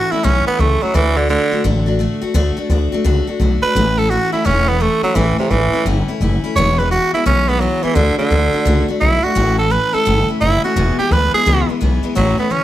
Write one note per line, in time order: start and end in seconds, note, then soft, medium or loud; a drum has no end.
0.00 0.12 E3 medium
0.00 0.13 A3 medium
0.00 0.12 C#4 medium
0.00 0.11 E4 medium
0.00 0.13 F#4 loud
0.12 0.23 A3 soft
0.12 0.23 C#4 medium
0.12 0.25 E4 medium
0.12 0.23 E4 medium
0.12 muted upright bass stroke medium
0.23 0.44 B1 medium
0.23 0.47 A2 medium
0.23 0.47 E3 medium
0.23 0.47 A3 medium
0.23 0.46 C#4 loud
0.23 0.46 C#4 medium
0.23 0.45 E4 medium
0.47 0.58 A3 soft
0.47 0.61 B3 loud
0.47 0.59 C#4 soft
0.47 0.59 E4 soft
0.58 0.79 C#2 medium
0.58 0.82 E3 medium
0.58 0.82 A3 medium
0.58 0.84 A3 medium
0.58 0.81 C#4 medium
0.58 0.80 E4 medium
0.81 0.96 F#3 medium
0.81 0.94 A3 soft
0.81 0.95 C#4 medium
0.81 0.94 E4 medium
0.94 1.35 D2 loud
0.94 1.17 D3 medium
0.94 1.18 E3 loud
0.94 1.17 A3 medium
0.94 1.16 D4 medium
0.94 1.15 F#4 medium
1.16 1.29 D3 medium
1.16 1.28 A3 soft
1.16 1.29 D4 soft
1.16 1.29 F#4 medium
1.29 1.52 D3 medium
1.29 1.64 D3 loud
1.29 1.52 A3 medium
1.29 1.51 D4 medium
1.29 1.51 F#4 medium
1.52 1.63 A3 soft
1.52 1.64 D4 medium
1.52 1.65 F#4 medium
1.52 muted upright bass stroke medium
1.64 2.05 A1 medium
1.64 1.87 D3 loud
1.64 1.87 A3 medium
1.64 1.86 D4 medium
1.64 1.85 F#4 medium
1.86 1.99 A3 soft
1.86 1.99 D4 medium
1.86 1.99 F#4 medium
1.99 2.22 D3 medium
1.99 2.22 A3 medium
1.99 2.21 D4 medium
1.99 2.20 F#4 medium
2.21 2.33 A3 soft
2.21 2.34 D4 medium
2.21 2.34 F#4 medium
2.21 muted upright bass stroke medium
2.34 2.50 D2 loud
2.34 2.57 D3 loud
2.34 2.58 A3 loud
2.34 2.56 D4 loud
2.34 2.55 F#4 loud
2.57 2.69 A3 medium
2.57 2.70 D4 medium
2.57 2.70 F#4 medium
2.69 2.89 D2 medium
2.69 2.93 D3 medium
2.69 2.93 A3 medium
2.69 2.92 D4 medium
2.69 2.91 F#4 medium
2.92 3.04 A3 medium
2.92 3.04 D4 medium
2.92 3.04 F#4 medium
3.04 3.24 C#2 medium
3.04 3.27 D3 loud
3.04 3.28 A3 loud
3.04 3.27 D4 loud
3.04 3.26 F#4 loud
3.27 3.39 A3 medium
3.27 3.40 D4 medium
3.27 3.40 F#4 medium
3.27 muted upright bass stroke medium
3.40 3.59 B1 medium
3.40 3.63 D3 medium
3.40 3.63 A3 medium
3.40 3.63 D4 medium
3.40 3.62 F#4 medium
3.63 3.75 A3 soft
3.63 3.76 D4 medium
3.63 3.75 F#4 medium
3.63 3.99 B4 loud
3.63 muted upright bass stroke medium
3.75 4.16 A1 loud
3.75 3.98 A2 medium
3.75 3.98 E3 medium
3.75 3.99 A3 loud
3.75 3.98 C#4 loud
3.75 3.97 E4 medium
3.98 4.10 A3 soft
3.98 4.11 C#4 soft
3.98 4.11 E4 medium
3.98 4.11 A4 loud
4.10 4.33 E3 medium
4.10 4.33 A3 medium
4.10 4.32 C#4 medium
4.10 4.31 E4 medium
4.10 4.32 F#4 loud
4.32 4.44 A3 medium
4.32 4.44 C#4 medium
4.32 4.45 E4 medium
4.32 4.47 E4 medium
4.32 muted upright bass stroke medium
4.45 4.86 E1 medium
4.45 4.68 A2 medium
4.45 4.68 E3 medium
4.45 4.68 A3 medium
4.45 4.70 C#4 loud
4.45 4.67 C#4 medium
4.45 4.66 E4 loud
4.67 4.79 A3 soft
4.67 4.83 B3 loud
4.67 4.79 C#4 medium
4.67 4.80 E4 medium
4.80 5.03 E3 medium
4.80 5.03 A3 medium
4.80 5.03 C#4 medium
4.80 5.02 E4 medium
5.02 5.17 F#3 loud
5.02 5.15 A3 soft
5.02 5.15 C#4 medium
5.02 5.15 E4 medium
5.02 muted upright bass stroke medium
5.15 5.31 A1 loud
5.15 5.38 A2 loud
5.15 5.38 E3 loud
5.15 5.38 A3 medium
5.15 5.38 C#4 medium
5.15 5.37 E4 loud
5.38 5.52 C3 loud
5.38 5.50 A3 soft
5.38 5.51 C#4 medium
5.38 5.51 E4 medium
5.38 muted upright bass stroke medium
5.50 5.70 A1 loud
5.50 5.85 E3 loud
5.50 5.73 E3 medium
5.50 5.74 A3 medium
5.50 5.73 C#4 medium
5.50 5.72 E4 medium
5.72 5.85 A3 soft
5.72 5.86 C#4 medium
5.72 5.86 E4 medium
5.72 muted upright bass stroke medium
5.85 6.05 G1 medium
5.85 6.08 A2 medium
5.85 6.08 E3 medium
5.85 6.09 A3 medium
5.85 6.08 C#4 medium
5.85 6.07 E4 medium
6.08 6.20 A3 soft
6.08 6.21 C#4 medium
6.08 6.21 E4 medium
6.08 muted upright bass stroke medium
6.20 6.40 F#1 medium
6.20 6.43 E3 medium
6.20 6.44 A3 medium
6.20 6.43 C#4 medium
6.20 6.43 E4 medium
6.44 6.57 A3 medium
6.44 6.57 C#4 medium
6.44 6.56 E4 medium
6.56 6.96 E1 loud
6.56 6.79 E2 medium
6.56 6.79 B2 medium
6.56 6.79 E3 medium
6.56 6.78 G#3 loud
6.56 6.78 B3 loud
6.56 6.77 E4 loud
6.56 6.80 C#5 loud
6.79 6.90 E3 soft
6.79 6.91 G#3 soft
6.79 6.91 B3 medium
6.79 6.91 E4 medium
6.79 6.91 B4 medium
6.91 7.14 E3 medium
6.91 7.14 G#3 medium
6.91 7.14 B3 medium
6.91 7.13 E4 medium
6.91 7.13 F#4 loud
7.13 7.25 E3 medium
7.13 7.25 G#3 medium
7.13 7.25 B3 medium
7.13 7.26 E4 medium
7.13 7.25 E4 medium
7.13 muted upright bass stroke medium
7.26 7.66 B1 medium
7.26 7.48 E2 medium
7.26 7.49 B2 medium
7.26 7.49 E3 medium
7.26 7.48 G#3 loud
7.26 7.48 B3 medium
7.26 7.50 C#4 loud
7.26 7.47 E4 loud
7.48 7.59 E3 soft
7.48 7.60 G#3 soft
7.48 7.62 B3 loud
7.48 7.61 B3 soft
7.48 7.61 E4 medium
7.60 7.83 E3 medium
7.60 7.85 F#3 medium
7.60 7.83 G#3 medium
7.60 7.82 B3 medium
7.60 7.81 E4 medium
7.83 7.97 E3 loud
7.83 7.95 E3 soft
7.83 7.95 G#3 medium
7.83 7.96 B3 medium
7.83 7.96 E4 medium
7.83 muted upright bass stroke medium
7.95 8.12 D2 loud
7.95 8.18 D3 loud
7.95 8.18 D3 medium
7.95 8.19 A3 medium
7.95 8.18 D4 medium
7.95 8.17 F#4 medium
8.18 8.86 D3 loud
8.18 8.30 A3 soft
8.18 8.30 D4 medium
8.18 8.31 F#4 medium
8.18 muted upright bass stroke medium
8.30 8.50 D2 medium
8.30 8.53 D3 medium
8.30 8.54 A3 medium
8.30 8.53 D4 medium
8.30 8.52 F#4 medium
8.53 8.65 A3 soft
8.53 8.65 D4 medium
8.53 8.66 F#4 medium
8.65 8.85 C#2 medium
8.65 8.88 D3 medium
8.65 8.89 A3 loud
8.65 8.88 D4 loud
8.65 8.87 F#4 loud
8.88 9.00 A3 medium
8.88 9.00 D4 medium
8.88 9.01 F#4 medium
8.88 muted upright bass stroke medium
9.00 9.20 B1 medium
9.00 9.23 D3 medium
9.00 9.24 A3 medium
9.00 9.23 D4 medium
9.00 9.25 E4 loud
9.00 9.22 F#4 medium
9.23 9.35 A3 soft
9.23 9.36 D4 soft
9.23 9.36 F#4 medium
9.23 9.58 F#4 medium
9.35 9.76 A1 loud
9.35 9.58 A2 medium
9.35 9.59 E3 medium
9.35 9.58 A3 medium
9.35 9.57 C#4 loud
9.35 9.56 E4 loud
9.58 9.71 C#4 soft
9.58 9.71 E4 medium
9.58 9.73 A4 medium
9.70 9.93 E3 medium
9.70 9.93 A3 medium
9.70 9.93 C#4 medium
9.70 9.91 E4 medium
9.70 9.95 B4 loud
9.92 10.05 A3 medium
9.92 10.06 C#4 medium
9.92 10.06 E4 medium
9.92 10.28 A4 loud
9.92 muted upright bass stroke medium
10.05 10.26 G1 medium
10.05 10.28 A2 medium
10.05 10.29 E3 loud
10.05 10.29 A3 medium
10.05 10.28 C#4 medium
10.05 10.27 E4 loud
10.28 10.40 A3 soft
10.28 10.40 C#4 medium
10.28 10.41 E4 medium
10.28 muted upright bass stroke medium
10.41 10.60 F#1 medium
10.41 10.63 E3 medium
10.41 10.64 A3 medium
10.41 10.63 C#4 medium
10.41 10.63 E4 loud
10.41 10.63 E4 medium
10.63 10.76 A3 soft
10.63 10.77 C#4 medium
10.63 10.76 E4 medium
10.63 10.98 F#4 medium
10.63 muted upright bass stroke medium
10.76 10.92 E1 loud
10.76 10.99 E2 medium
10.76 10.99 B2 loud
10.76 10.99 E3 medium
10.76 10.99 G#3 medium
10.76 10.99 B3 loud
10.76 10.98 E4 loud
10.98 11.10 E3 medium
10.98 11.11 G#3 medium
10.98 11.11 B3 medium
10.98 11.11 E4 medium
10.98 11.13 G4 loud
10.98 muted upright bass stroke medium
11.11 11.30 D2 loud
11.11 11.34 E3 medium
11.11 11.34 G#3 medium
11.11 11.34 B3 medium
11.11 11.33 E4 medium
11.11 11.33 B4 loud
11.34 11.46 E3 soft
11.34 11.45 G#3 medium
11.34 11.46 B3 medium
11.34 11.46 E4 medium
11.34 11.68 G#4 loud
11.34 muted upright bass stroke medium
11.46 11.65 C#2 loud
11.46 11.69 E2 medium
11.46 11.69 B2 loud
11.46 11.69 E3 medium
11.46 11.69 G#3 medium
11.46 11.68 B3 medium
11.46 11.67 E4 loud
11.69 11.79 E3 soft
11.69 11.80 G#3 soft
11.69 11.80 B3 medium
11.69 11.81 E4 medium
11.69 muted upright bass stroke medium
11.81 12.01 B1 medium
11.81 12.04 E3 medium
11.81 12.03 G#3 medium
11.81 12.02 B3 medium
11.81 12.02 E4 medium
12.03 12.14 E3 soft
12.03 12.15 G#3 medium
12.03 12.16 B3 medium
12.03 12.15 E4 medium
12.03 muted upright bass stroke medium
12.15 12.38 A1 medium
12.15 12.38 A2 medium
12.15 12.38 E3 medium
12.15 12.38 F#3 loud
12.15 12.38 A3 medium
12.15 12.38 C#4 loud
12.15 12.37 E4 loud
12.38 12.50 A3 soft
12.38 12.53 B3 medium
12.38 12.50 C#4 soft
12.38 12.51 E4 medium
12.38 muted upright bass stroke medium
12.50 12.64 D2 loud
12.50 12.64 E3 medium
12.50 12.64 A3 medium
12.50 12.64 C#4 medium
12.50 12.64 C#4 loud
12.50 12.64 E4 medium